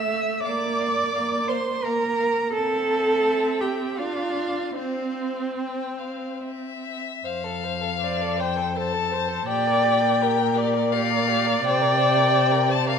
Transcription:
0.00 0.36 A3 medium
0.00 0.43 E5 loud
0.00 0.43 E6 medium
0.11 0.19 F5 medium
0.43 1.07 A#3 medium
0.43 1.50 D5 loud
0.43 0.53 F5 medium
0.43 1.51 D6 medium
0.80 0.88 F5 medium
1.14 1.76 A#3 medium
1.14 1.23 F5 medium
1.48 1.85 C5 medium
1.48 1.57 F5 medium
1.48 1.86 C6 medium
1.83 2.46 A#3 medium
1.83 2.53 A#4 loud
1.83 1.93 F5 medium
1.83 2.54 A#5 medium
2.20 2.28 F5 medium
2.53 4.00 C4 medium
2.53 3.62 A4 loud
2.53 4.01 E5 medium
2.53 3.63 A5 medium
3.61 4.01 G4 medium
3.61 3.99 G5 medium
3.98 4.76 D4 medium
3.98 4.78 F4 medium
3.98 4.75 F5 medium
3.98 4.76 F5 medium
4.76 6.44 C4 medium
4.76 7.00 C4 medium
4.76 6.40 C5 medium
4.76 5.48 F5 medium
5.57 6.00 G5 medium
5.99 6.43 F5 medium
6.43 7.26 E5 medium
7.25 9.44 F2 medium
7.25 7.45 C5 medium
7.25 8.41 F5 loud
7.44 7.65 A4 medium
7.64 7.83 C5 medium
7.81 8.00 A4 medium
8.00 8.22 C5 medium
8.00 8.42 D5 medium
8.21 8.38 A4 medium
8.37 8.58 C5 medium
8.37 8.78 C5 medium
8.37 8.77 G5 loud
8.56 8.75 A4 medium
8.76 9.15 A4 medium
8.76 8.94 C5 medium
8.76 9.47 A5 loud
8.93 9.14 A4 medium
9.12 9.30 C5 medium
9.12 9.48 C5 medium
9.28 9.47 A4 medium
9.47 11.59 A#2 medium
9.47 9.69 G4 medium
9.47 10.23 D5 loud
9.47 10.59 G5 loud
9.67 9.85 A#4 medium
9.84 10.02 G4 medium
10.01 10.17 A#4 medium
10.18 10.39 G4 medium
10.18 10.94 A#4 medium
10.37 10.56 A#4 medium
10.54 10.75 G4 medium
10.54 10.94 D5 loud
10.74 10.92 A#4 medium
10.92 11.12 G4 medium
10.92 12.99 D5 loud
10.92 11.66 F5 loud
11.11 11.29 A#4 medium
11.28 11.49 G4 medium
11.47 11.64 A#4 medium
11.64 12.99 C3 loud
11.64 11.83 C5 medium
11.64 12.72 G5 loud
11.82 12.00 A#4 medium
11.98 12.19 C5 medium
12.17 12.34 A#4 medium
12.34 12.53 C5 medium
12.52 12.71 A#4 medium
12.69 12.89 C5 medium
12.69 12.88 A5 loud
12.87 12.99 A#4 medium
12.87 12.99 F5 medium

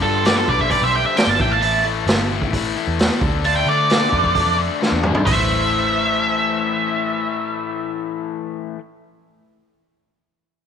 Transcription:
0.01 0.24 G2 medium
0.01 0.44 G2 medium
0.01 0.24 D3 medium
0.01 0.25 G3 loud
0.01 0.25 F4 medium
0.01 0.24 A4 medium
0.25 0.47 G2 loud
0.25 0.48 D3 medium
0.25 0.48 G3 loud
0.25 0.36 B4 medium
0.25 0.37 D5 medium
0.25 snare loud
0.25 open hi-hat medium
0.37 0.47 F4 medium
0.37 0.48 A4 medium
0.48 0.79 B1 medium
0.48 0.69 G2 medium
0.48 0.70 D3 medium
0.48 0.70 G3 medium
0.48 0.62 B4 medium
0.48 0.61 D5 medium
0.48 kick medium
0.60 0.72 C5 medium
0.60 0.71 E5 medium
0.60 kick medium
0.70 0.92 G2 medium
0.70 0.92 D3 medium
0.70 0.93 G3 medium
0.70 0.82 B4 medium
0.70 0.83 D5 loud
0.70 kick medium
0.70 open hi-hat medium
0.82 1.03 B1 medium
0.82 0.95 C5 medium
0.82 0.94 E5 medium
0.93 1.14 G2 medium
0.93 1.15 D3 loud
0.93 1.16 G3 loud
0.93 1.05 E5 medium
0.93 1.05 G5 medium
1.05 1.18 C5 medium
1.05 1.17 E5 loud
1.16 1.37 G2 medium
1.16 1.38 D3 medium
1.16 1.38 G3 medium
1.16 1.30 D5 medium
1.16 1.29 G5 medium
1.16 snare loud
1.16 open hi-hat medium
1.27 1.38 G1 medium
1.27 1.41 F5 medium
1.27 1.41 A5 medium
1.38 2.04 A1 medium
1.38 1.60 A2 medium
1.38 1.61 E3 medium
1.38 1.62 A3 medium
1.38 1.52 E5 medium
1.38 1.51 G5 medium
1.38 kick loud
1.53 1.63 F5 medium
1.53 1.60 A5 medium
1.61 1.82 A2 loud
1.61 1.83 E3 medium
1.61 1.85 A3 loud
1.61 1.84 E5 medium
1.61 1.84 A5 medium
1.61 open hi-hat medium
1.83 2.06 A2 medium
1.83 2.05 E3 medium
1.83 2.08 A3 medium
2.06 2.53 G1 medium
2.06 2.29 A2 medium
2.06 2.29 E3 loud
2.06 2.32 A3 medium
2.06 snare loud
2.06 open hi-hat medium
2.30 2.51 A2 medium
2.30 2.53 E3 medium
2.30 2.54 A3 medium
2.42 kick medium
2.53 2.74 A1 loud
2.53 2.74 A2 medium
2.53 2.75 E3 medium
2.53 2.76 A3 medium
2.53 kick medium
2.53 open hi-hat medium
2.75 2.98 A2 medium
2.75 2.99 E3 medium
2.75 3.00 A3 medium
2.87 3.08 E2 medium
2.99 3.21 A2 medium
2.99 3.21 E3 medium
2.99 3.24 A3 medium
2.99 snare loud
2.99 open hi-hat medium
3.21 3.63 D2 loud
3.21 3.44 D3 loud
3.21 3.46 A3 loud
3.21 3.45 D4 loud
3.21 kick loud
3.44 3.67 D3 medium
3.44 3.68 A3 loud
3.44 3.68 D4 loud
3.44 3.56 F5 medium
3.44 3.56 A5 medium
3.44 open hi-hat soft
3.56 3.67 E5 medium
3.56 3.67 G5 medium
3.66 4.08 D3 medium
3.66 3.89 D3 medium
3.66 3.90 A3 medium
3.66 3.91 D4 medium
3.66 4.55 A4 medium
3.66 4.56 D5 medium
3.90 4.12 D3 medium
3.90 4.13 A3 medium
3.90 4.13 D4 medium
3.90 snare loud
3.90 open hi-hat medium
4.13 4.44 F2 medium
4.13 4.34 D3 medium
4.13 4.35 A3 medium
4.13 4.36 D4 medium
4.13 kick medium
4.24 kick medium
4.35 4.57 D3 medium
4.35 4.58 A3 medium
4.35 4.58 D4 medium
4.35 kick medium
4.35 open hi-hat soft
4.47 4.67 F2 medium
4.58 4.79 D3 medium
4.58 4.80 A3 loud
4.58 4.81 D4 medium
4.80 5.03 D3 medium
4.80 5.04 A3 medium
4.80 5.05 D4 medium
4.80 snare medium
4.92 5.13 E2 medium
5.03 5.25 D3 medium
5.03 5.26 A3 medium
5.03 5.26 D4 medium
5.03 mid tom medium
5.15 floor tom medium
5.25 8.24 A1 medium
5.25 8.75 A2 medium
5.25 8.78 E3 loud
5.25 8.24 C5 medium
5.25 8.24 E5 medium
5.25 kick medium
5.25 open hi-hat medium
5.29 8.79 A3 loud

